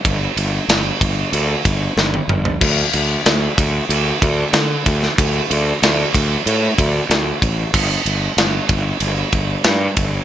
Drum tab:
CC |----------------|x---------------|----------------|x---------------|
RD |x-x-x-x-x-x-----|--x-x-x-x-x-x-x-|x-x-x-x-x-x-x-x-|--x-x-x-x-x-x-x-|
SD |----o-------o---|----o-------o--o|----o-------o---|----o-------o---|
T1 |-------------o--|----------------|----------------|----------------|
T2 |--------------o-|----------------|----------------|----------------|
FT |---------------o|----------------|----------------|----------------|
BD |o-----o---o-----|o-----o---o---o-|o-----o---o---o-|o-----o---o---o-|